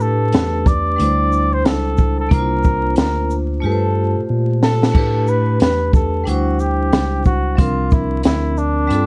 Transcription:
Already playing: A2 A3 D4 G4 B4
0.00 A4, shaker
0.32 E2, snare, closed hi-hat
0.66 D5, kick, closed hi-hat, shaker
0.96 D2 G3 D4 E4, closed hi-hat
1.02 C5
1.32 shaker
1.53 C5
1.65 C#2 A4, snare, closed hi-hat
1.97 kick, shaker
2.20 A4
2.29 C2 A#3 D4 E4 A#4, kick, closed hi-hat
2.34 C5
2.39 F4
2.64 kick, shaker
2.96 D2 A#4, snare, closed hi-hat
3.30 shaker
3.60 G2 A3 F4 G4
3.65 A4 B4
3.72 C5
4.17 A#2
4.29 A#2
4.63 A4, snare
4.83 snare
4.92 A2 A3 D4 G4, kick, crash
4.97 B4
5.27 B4, shaker
5.60 E2 B4, snare, closed hi-hat
5.93 A4, kick, shaker
6.24 D2 G3 D4 E4, closed hi-hat
6.28 F#4 C5
6.59 G4, shaker
6.93 C#2, snare, closed hi-hat
7.25 F#4, kick, shaker
7.55 C2 F3 C4 D4 F4, kick, closed hi-hat
7.60 A#4
7.91 E4, kick, shaker
8.23 D2 E4, snare, closed hi-hat
8.58 D4, shaker
8.88 G2 G3 C4 F4, closed hi-hat
8.93 A4

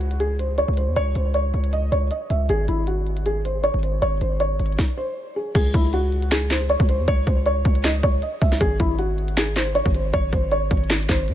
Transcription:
Already playing: C#2 F#4
0.01 closed hi-hat
0.11 closed hi-hat
0.20 G#4, closed hi-hat
0.39 C5, closed hi-hat
0.58 C#5, closed hi-hat
0.68 C#2
0.77 C5, closed hi-hat
0.87 E2
0.96 C#2 C#5, closed hi-hat
1.15 C#2 C5, closed hi-hat
1.34 C#5, closed hi-hat
1.54 C#2, closed hi-hat
1.64 closed hi-hat
1.73 D#5, closed hi-hat
1.92 C#2 C#5, closed hi-hat
2.11 D#5, closed hi-hat
2.30 C#2 E5, closed hi-hat
2.49 G#1 G#4, closed hi-hat
2.68 G#1 E4, closed hi-hat
2.87 F#4, closed hi-hat
3.07 closed hi-hat
3.17 closed hi-hat
3.26 G#4, closed hi-hat
3.45 C5, closed hi-hat
3.64 C#5, closed hi-hat
3.74 G#1
3.83 C5, closed hi-hat
4.02 G#1 C#5, closed hi-hat
4.21 G#1 C5, closed hi-hat
4.40 C#5, closed hi-hat
4.59 G#1, closed hi-hat
4.66 closed hi-hat
4.72 closed hi-hat
4.79 kick, snare
4.97 C5
5.36 G#4
5.55 C#2 G#4, kick, closed hi-hat, crash
5.74 C#2 E4, kick, closed hi-hat
5.93 F#4, closed hi-hat
6.12 closed hi-hat
6.22 closed hi-hat
6.31 G#4, snare, clap, closed hi-hat
6.51 C5, snare, clap, closed hi-hat
6.69 C#5, closed hi-hat
6.80 C#2, kick
6.89 C5, closed hi-hat
6.99 E2
7.08 C#2 C#5, kick, closed hi-hat
7.27 C#2 C5, kick, closed hi-hat
7.46 C#5, closed hi-hat
7.65 C#2, kick, closed hi-hat
7.75 closed hi-hat
7.84 D#5, snare, clap, closed hi-hat
8.03 C#2 C#5, kick, closed hi-hat
8.22 D#5, closed hi-hat
8.41 C#2 E5, kick, open hi-hat
8.52 snare
8.61 G#1 G#4, kick, closed hi-hat
8.80 G#1 E4, kick, closed hi-hat
8.99 F#4, closed hi-hat
9.18 closed hi-hat
9.28 closed hi-hat
9.37 G#4, snare, clap, closed hi-hat
9.56 C5, snare, clap, closed hi-hat
9.75 C#5, closed hi-hat
9.86 G#1, kick
9.95 C5, closed hi-hat
10.13 G#1 C#5, kick, closed hi-hat
10.33 G#1 C5, kick, closed hi-hat
10.51 C#5, closed hi-hat
10.71 G#1, kick, closed hi-hat
10.77 closed hi-hat
10.84 closed hi-hat
10.90 snare, clap, closed hi-hat
10.96 closed hi-hat
11.03 closed hi-hat
11.09 G#1 C5, kick, snare, clap, closed hi-hat
11.28 G#2, closed hi-hat

